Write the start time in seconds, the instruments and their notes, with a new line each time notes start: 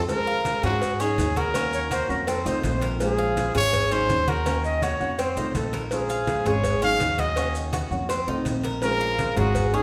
0.08 nylon-string guitar F3 G#3 C#4 F4, trumpet A#4, cowbell, high conga, maracas
0.27 cuban tres F5, high conga
0.45 nylon-string guitar F3 G#3 C#4 F4, cowbell, high conga, maracas
0.63 upright bass G#2, nylon-string guitar G#3 C#4 F4, trumpet F#4, cuban tres G#4, cowbell, high conga, low conga, maracas
0.82 muted nylon-string guitar stroke, cowbell, high conga, maracas
1.00 nylon-string guitar F#3 C#4 D#4 G#4, cuban tres C#4, trumpet G#4, high conga, maracas
1.18 upright bass D#2, nylon-string guitar F#3 C#4 D#4 G#4, cowbell, high conga, maracas
1.36 cuban tres F#4, trumpet A#4, cowbell, high conga, maracas
1.54 nylon-string guitar D#3 A#3 C#4 F#4, cuban tres C#4, cowbell, high conga, maracas
1.73 flute C#5, high conga, maracas
1.90 nylon-string guitar D#3 A#3 C#4 F#4, cuban tres F#4, flute C5, cowbell, high conga, maracas
2.09 upright bass F2, nylon-string guitar A#3 C#4 F#4, flute A#4, high conga, maracas
2.27 cuban tres C4, flute A4, muted nylon-string guitar stroke, cowbell, high conga, maracas
2.46 upright bass C2, nylon-string guitar D#3 A3 C4 F4, cuban tres D#4, flute C5, high conga, maracas
2.63 upright bass A#1, nylon-string guitar D#3 A3 C4 F4, flute C5, cowbell, high conga, maracas
2.81 cuban tres A#4, cowbell, high conga, maracas
2.99 nylon-string guitar F3 G#3 C#4 F4, trumpet G#4, cowbell, high conga, maracas
3.19 cuban tres F5, high conga
3.37 nylon-string guitar F3 G#3 C#4 F4, cowbell, high conga, maracas
3.54 upright bass G#1, nylon-string guitar G#3 C#4 F4, cuban tres G#4, trumpet C#5, cowbell, high conga, low conga, maracas
3.73 muted nylon-string guitar stroke, cowbell, high conga, low conga, maracas
3.91 nylon-string guitar F#3 C#4 D#4 G#4, cuban tres C#4, trumpet C5, high conga, maracas
4.09 upright bass D#2, nylon-string guitar F#3 C#4 D#4, cowbell, high conga, maracas
4.28 cuban tres F#4, trumpet A#4, cowbell, high conga, maracas
4.46 nylon-string guitar D#3 A#3 C#4 F#4, cuban tres C#4, cowbell, high conga, maracas
4.64 flute D#5, high conga, maracas
4.82 nylon-string guitar D#3 A#3 C#4 F#4, cuban tres F#4, flute C#5, cowbell, high conga, maracas
5.00 upright bass F2, nylon-string guitar A#3 C#4 F#4, high conga, maracas
5.18 cuban tres C4, flute C5, muted nylon-string guitar stroke, cowbell, high conga, maracas
5.36 upright bass C2, nylon-string guitar D#3 A3 C4 F4, cuban tres D#4, high conga, maracas
5.54 upright bass A#1, nylon-string guitar D#3 A3 C4 F4, flute A4, cowbell, high conga, maracas
5.73 cuban tres A#4, cowbell, high conga, maracas
5.91 nylon-string guitar F3 G#3 C#4 F4, trumpet G#4, cowbell, high conga, maracas
6.09 cuban tres F5, high conga, maracas
6.27 nylon-string guitar F3 G#3 C#4 F4, cowbell, high conga, maracas
6.45 upright bass G#1, nylon-string guitar G#3 C#4 F4, cuban tres G#4, trumpet C#5, cowbell, high conga, low conga, maracas
6.64 muted nylon-string guitar stroke, cowbell, high conga, low conga, maracas
6.82 nylon-string guitar F#3 C#4 D#4 G#4, cuban tres C#4, trumpet F5, high conga, maracas
7.00 upright bass D#2, nylon-string guitar F#3 C#4 D#4 G#4, cowbell, high conga, maracas
7.18 cuban tres F#4, trumpet D#5, cowbell, high conga, maracas
7.36 nylon-string guitar D#3 A#3 C#4 F#4, cuban tres C#4, cowbell, high conga, maracas
7.55 high conga, maracas
7.73 nylon-string guitar D#3 A#3 C#4 F#4, cuban tres F#4, cowbell, high conga, maracas
7.90 upright bass F2, nylon-string guitar A#3 C#4 F#4, high conga, maracas
8.09 cuban tres C4, muted nylon-string guitar stroke, cowbell, high conga, maracas
8.27 upright bass C2, nylon-string guitar D#3 A3 C4 F4, cuban tres D#4, high conga
8.45 upright bass A#1, nylon-string guitar D#3 A3 C4 F4, cowbell, high conga, maracas
8.63 cuban tres A#4, cowbell, high conga, maracas
8.82 nylon-string guitar F3 G#3 C#4 F4, trumpet A#4, cowbell, high conga, maracas
9.01 cuban tres F5, high conga
9.18 nylon-string guitar F3 G#3 C#4 F4, cowbell, high conga, maracas
9.36 upright bass G#1, nylon-string guitar G#3 C#4 F4, trumpet F#4, cuban tres G#4, cowbell, high conga, low conga, maracas
9.55 muted nylon-string guitar stroke, cowbell, high conga, low conga, maracas
9.73 nylon-string guitar F#3 C#4 D#4 G#4, cuban tres C#4, trumpet G#4, high conga